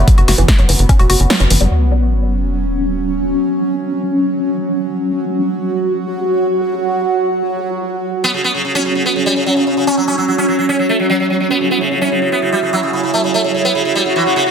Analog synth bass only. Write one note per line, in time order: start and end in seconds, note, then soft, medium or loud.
0.18 0.24 F#1 medium
0.28 0.34 F#1 loud
0.38 0.45 F#1 medium
0.59 0.65 F#1 medium
0.69 0.75 F#1 loud
0.79 0.85 F#1 loud
0.99 1.06 E1 medium
1.10 1.16 F#1 medium
1.20 1.26 F#1 medium
1.40 1.47 F#1 medium
1.50 1.57 F#1 loud
1.61 1.67 F#1 medium